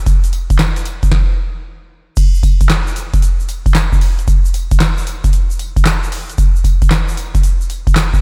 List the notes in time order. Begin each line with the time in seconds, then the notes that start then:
0.06 kick, closed hi-hat, tambourine, shaker
0.24 closed hi-hat, shaker
0.33 closed hi-hat, tambourine
0.50 kick, closed hi-hat, shaker
0.59 snare, clap, closed hi-hat, tambourine, shaker
0.76 closed hi-hat, shaker
0.85 closed hi-hat, tambourine
1.03 kick, closed hi-hat, shaker
1.12 kick, snare
2.17 kick, closed hi-hat, crash, tambourine, shaker
2.35 shaker
2.43 kick, closed hi-hat, tambourine, shaker
2.61 kick, closed hi-hat, shaker
2.70 snare, clap, closed hi-hat, tambourine, shaker
2.87 shaker
2.96 closed hi-hat, tambourine, shaker
3.14 kick, closed hi-hat, shaker
3.22 closed hi-hat, shaker
3.40 shaker
3.49 closed hi-hat, tambourine, shaker
3.66 kick, closed hi-hat, shaker
3.75 snare, clap, closed hi-hat, tambourine, shaker
3.93 kick, shaker
4.01 open hi-hat, tambourine
4.19 closed hi-hat, shaker
4.28 kick, closed hi-hat, tambourine, shaker
4.45 shaker
4.54 closed hi-hat, tambourine, shaker
4.71 kick, closed hi-hat, shaker
4.80 snare, clap, closed hi-hat, tambourine, shaker
4.98 shaker
5.07 closed hi-hat, tambourine, shaker
5.24 kick, closed hi-hat, shaker
5.33 closed hi-hat, shaker
5.50 shaker
5.59 closed hi-hat, tambourine, shaker
5.76 kick, closed hi-hat, shaker
5.85 snare, clap, closed hi-hat, tambourine, shaker
6.03 shaker
6.12 open hi-hat, tambourine
6.30 closed hi-hat, shaker
6.38 kick, closed hi-hat, tambourine, shaker
6.56 shaker
6.64 kick, closed hi-hat, tambourine, shaker
6.82 kick, closed hi-hat, shaker
6.91 snare, clap, closed hi-hat, tambourine, shaker
7.09 shaker
7.17 closed hi-hat, tambourine, shaker
7.35 kick, closed hi-hat, shaker
7.43 closed hi-hat, shaker
7.61 shaker
7.70 closed hi-hat, tambourine, shaker
7.87 kick, closed hi-hat, shaker
7.96 snare, clap, closed hi-hat, tambourine, shaker
8.14 kick, shaker